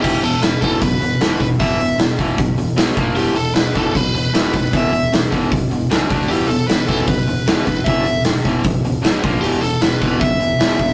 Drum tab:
CC |x---------------|----------------|----------------|----------------|
HH |--o-o-o-o-o-o-o-|o-o-o-o-o-o-o-o-|o-o-o-o-o-o-o-o-|o-o-o-o-o-o-o-o-|
SD |----o-------o---|----o-------o---|----o-------o---|----o-------o--o|
BD |o-----o-o-----o-|o-----o-o-----o-|------o-o-----o-|o-----o-o-----o-|

CC |----------------|----------------|----------------|
HH |o-o-o-o-o-o-o-o-|o-o-o-o-o-o-o-o-|o-o-o-o-o-o-o-o-|
SD |----o-------o---|----o-------o---|----o-------o--o|
BD |------o-o-----o-|o-----o-o-----o-|------o-o-----o-|